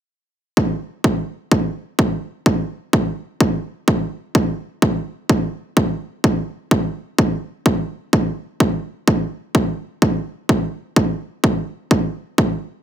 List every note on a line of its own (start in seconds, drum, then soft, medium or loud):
0.57 kick loud
1.04 kick loud
1.51 kick loud
1.99 kick loud
2.46 kick loud
2.93 kick loud
3.40 kick loud
3.88 kick loud
4.35 kick loud
4.82 kick loud
5.29 kick loud
5.77 kick loud
6.24 kick loud
6.71 kick loud
7.18 kick loud
7.66 kick loud
8.13 kick loud
8.60 kick loud
9.08 kick loud
9.55 kick loud
10.02 kick loud
10.49 kick loud
10.96 kick loud
11.44 kick loud
11.91 kick loud
12.38 kick loud